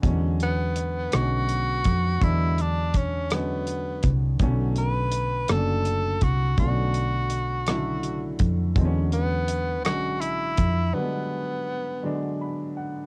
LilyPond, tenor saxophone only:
\new Staff \with { instrumentName = "Tenor saxophone" } { \time 6/8 \key e \mixolydian \tempo 4. = 55 r8 b4 fis'4. | e'8 d'8 cis'8 b4 r8 | r8 b'4 a'4 fis'8 | fis'2~ fis'8 r8 |
r8 b4 fis'8 e'4 | b2 r4 | }